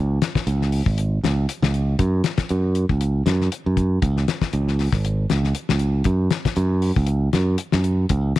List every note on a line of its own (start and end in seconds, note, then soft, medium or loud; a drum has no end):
0.00 0.18 C#2 loud
0.22 snare medium
0.22 closed hi-hat medium
0.35 kick medium
0.35 snare medium
0.47 0.81 C#2 medium
0.47 closed hi-hat medium
0.62 snare soft
0.72 open hi-hat medium
0.86 1.18 G#1 medium
0.86 kick medium
0.98 closed hi-hat medium
1.24 1.45 C#2 medium
1.24 snare medium
1.24 closed hi-hat soft
1.49 closed hi-hat medium
1.62 1.94 C#2 medium
1.62 snare medium
1.74 closed hi-hat soft
1.99 2.21 F#2 loud
1.99 kick medium
1.99 closed hi-hat medium
2.24 snare medium
2.24 closed hi-hat medium
2.38 kick medium
2.38 snare medium
2.38 closed hi-hat medium
2.49 2.84 F#2 loud
2.49 closed hi-hat medium
2.75 closed hi-hat medium
2.89 3.22 C#2 medium
2.89 kick medium
3.01 closed hi-hat medium
3.26 3.48 F#2 medium
3.26 snare medium
3.26 closed hi-hat medium
3.41 snare soft
3.52 closed hi-hat medium
3.66 3.98 F#2 medium
3.77 kick medium
3.77 closed hi-hat medium
4.02 4.24 C#2 loud
4.02 kick medium
4.02 closed hi-hat medium
4.17 snare soft
4.28 snare medium
4.28 closed hi-hat medium
4.42 kick medium
4.42 snare medium
4.53 4.87 C#2 loud
4.53 closed hi-hat medium
4.68 snare soft
4.79 snare soft
4.79 open hi-hat medium
4.92 5.25 G#1 medium
4.92 kick medium
4.92 snare soft
5.05 closed hi-hat medium
5.30 5.52 C#2 medium
5.30 snare medium
5.30 closed hi-hat soft
5.44 snare soft
5.55 closed hi-hat medium
5.69 6.01 C#2 medium
5.69 snare medium
5.79 closed hi-hat soft
6.04 6.28 F#2 loud
6.04 kick medium
6.04 closed hi-hat medium
6.31 snare medium
6.31 closed hi-hat medium
6.45 kick medium
6.45 snare medium
6.45 closed hi-hat medium
6.56 6.91 F#2 loud
6.56 closed hi-hat medium
6.82 open hi-hat medium
6.96 7.28 C#2 medium
6.96 kick medium
7.07 closed hi-hat medium
7.33 7.55 F#2 medium
7.33 snare medium
7.33 closed hi-hat medium
7.58 closed hi-hat medium
7.72 8.05 F#2 medium
7.72 snare medium
7.84 closed hi-hat medium
8.09 8.32 C#2 loud
8.09 kick medium
8.09 closed hi-hat medium
8.36 snare medium
8.36 closed hi-hat medium